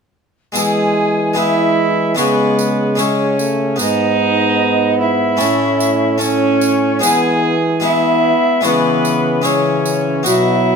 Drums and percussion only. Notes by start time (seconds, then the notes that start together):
0.55 tambourine
2.18 tambourine
2.59 tambourine
2.99 tambourine
3.39 tambourine
3.79 tambourine
5.41 tambourine
5.80 tambourine
6.21 tambourine
6.61 tambourine
7.03 tambourine
8.65 tambourine
9.05 tambourine
9.45 tambourine
9.86 tambourine
10.26 tambourine